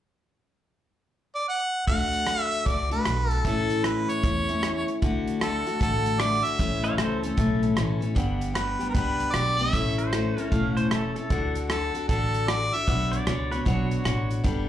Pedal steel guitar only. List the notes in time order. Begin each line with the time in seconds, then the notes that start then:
6.84 C#5 F5
6.97 A4 C5
7.23 A4
9.98 C5
10.52 F5
10.77 C5
10.91 A4
11.16 A4
13.12 D5
13.52 B4
13.65 F#4
13.91 F#4